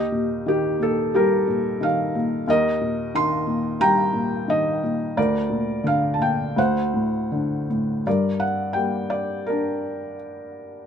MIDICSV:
0, 0, Header, 1, 2, 480
1, 0, Start_track
1, 0, Tempo, 671892
1, 1767, Time_signature, 4, 2, 24, 8
1, 2718, Tempo, 685714
1, 4158, Tempo, 708383
1, 4638, Tempo, 747198
1, 5598, Tempo, 703400
1, 7510, End_track
2, 0, Start_track
2, 0, Title_t, "Felt piano"
2, 0, Program_c, 0, 0
2, 0, Control_c, 0, 64, 127
2, 0, Note_on_c, 0, 39, 53
2, 0, Note_on_c, 0, 67, 56
2, 0, Note_on_c, 0, 75, 74
2, 85, Note_on_c, 0, 46, 45
2, 331, Note_on_c, 0, 51, 46
2, 334, Note_off_c, 0, 67, 0
2, 345, Note_on_c, 0, 67, 74
2, 356, Note_off_c, 0, 75, 0
2, 559, Note_off_c, 0, 46, 0
2, 560, Note_off_c, 0, 67, 0
2, 569, Note_on_c, 0, 46, 41
2, 590, Note_on_c, 0, 69, 70
2, 816, Note_on_c, 0, 55, 51
2, 819, Note_on_c, 0, 67, 59
2, 825, Note_off_c, 0, 69, 0
2, 827, Note_on_c, 0, 70, 81
2, 1043, Note_off_c, 0, 46, 0
2, 1054, Note_on_c, 0, 46, 47
2, 1262, Note_off_c, 0, 51, 0
2, 1291, Note_on_c, 0, 51, 47
2, 1307, Note_on_c, 0, 77, 76
2, 1312, Note_off_c, 0, 70, 0
2, 1525, Note_off_c, 0, 46, 0
2, 1536, Note_on_c, 0, 46, 49
2, 1735, Note_off_c, 0, 39, 0
2, 1742, Note_off_c, 0, 55, 0
2, 1744, Note_off_c, 0, 67, 0
2, 1748, Note_off_c, 0, 77, 0
2, 1754, Note_off_c, 0, 51, 0
2, 1764, Note_off_c, 0, 46, 0
2, 1768, Note_on_c, 0, 39, 56
2, 1775, Note_on_c, 0, 70, 64
2, 1777, Control_c, 0, 64, 0
2, 1786, Note_on_c, 0, 75, 90
2, 1899, Control_c, 0, 64, 127
2, 2009, Note_on_c, 0, 46, 49
2, 2248, Note_on_c, 0, 51, 48
2, 2254, Note_on_c, 0, 84, 87
2, 2265, Note_off_c, 0, 75, 0
2, 2467, Note_off_c, 0, 46, 0
2, 2478, Note_on_c, 0, 46, 45
2, 2695, Note_off_c, 0, 70, 0
2, 2717, Note_on_c, 0, 55, 50
2, 2721, Note_on_c, 0, 79, 70
2, 2721, Note_on_c, 0, 82, 102
2, 2739, Note_off_c, 0, 84, 0
2, 2935, Note_off_c, 0, 46, 0
2, 2946, Note_on_c, 0, 46, 47
2, 3170, Note_off_c, 0, 51, 0
2, 3191, Note_on_c, 0, 51, 49
2, 3203, Note_on_c, 0, 75, 84
2, 3210, Note_off_c, 0, 82, 0
2, 3428, Note_off_c, 0, 46, 0
2, 3438, Note_on_c, 0, 46, 45
2, 3647, Note_off_c, 0, 55, 0
2, 3650, Note_off_c, 0, 39, 0
2, 3650, Note_off_c, 0, 79, 0
2, 3660, Note_off_c, 0, 51, 0
2, 3671, Note_off_c, 0, 46, 0
2, 3676, Note_on_c, 0, 74, 80
2, 3677, Note_on_c, 0, 38, 55
2, 3681, Note_on_c, 0, 70, 59
2, 3686, Control_c, 0, 64, 0
2, 3695, Note_off_c, 0, 75, 0
2, 3790, Control_c, 0, 64, 127
2, 3903, Note_on_c, 0, 46, 47
2, 4142, Note_on_c, 0, 50, 45
2, 4162, Note_on_c, 0, 77, 80
2, 4173, Note_off_c, 0, 74, 0
2, 4345, Note_on_c, 0, 81, 54
2, 4355, Note_off_c, 0, 77, 0
2, 4367, Note_off_c, 0, 46, 0
2, 4378, Note_on_c, 0, 46, 43
2, 4394, Note_off_c, 0, 81, 0
2, 4399, Note_on_c, 0, 79, 70
2, 4612, Note_off_c, 0, 38, 0
2, 4615, Note_off_c, 0, 70, 0
2, 4616, Note_off_c, 0, 50, 0
2, 4623, Note_off_c, 0, 46, 0
2, 4634, Note_on_c, 0, 38, 57
2, 4646, Note_on_c, 0, 78, 77
2, 4647, Control_c, 0, 64, 0
2, 4648, Note_off_c, 0, 79, 0
2, 4648, Note_on_c, 0, 72, 53
2, 4750, Control_c, 0, 64, 127
2, 4873, Note_on_c, 0, 45, 44
2, 5118, Note_on_c, 0, 50, 41
2, 5345, Note_off_c, 0, 78, 0
2, 5355, Note_off_c, 0, 45, 0
2, 5364, Note_on_c, 0, 45, 41
2, 5570, Note_off_c, 0, 38, 0
2, 5578, Note_off_c, 0, 72, 0
2, 5582, Note_off_c, 0, 50, 0
2, 5591, Note_off_c, 0, 45, 0
2, 5600, Note_on_c, 0, 43, 46
2, 5601, Note_on_c, 0, 74, 66
2, 5606, Control_c, 0, 64, 0
2, 5609, Note_on_c, 0, 70, 46
2, 5738, Control_c, 0, 64, 127
2, 5825, Note_on_c, 0, 78, 71
2, 5847, Note_off_c, 0, 74, 0
2, 6053, Note_on_c, 0, 79, 64
2, 6068, Note_on_c, 0, 55, 37
2, 6075, Note_on_c, 0, 58, 38
2, 6078, Note_off_c, 0, 78, 0
2, 6304, Note_on_c, 0, 74, 68
2, 6312, Note_off_c, 0, 79, 0
2, 6537, Note_off_c, 0, 70, 0
2, 6553, Note_on_c, 0, 70, 60
2, 6560, Note_off_c, 0, 74, 0
2, 6576, Note_on_c, 0, 62, 47
2, 7011, Note_off_c, 0, 70, 0
2, 7488, Note_off_c, 0, 55, 0
2, 7492, Note_off_c, 0, 58, 0
2, 7493, Note_off_c, 0, 43, 0
2, 7501, Note_off_c, 0, 62, 0
2, 7510, End_track
0, 0, End_of_file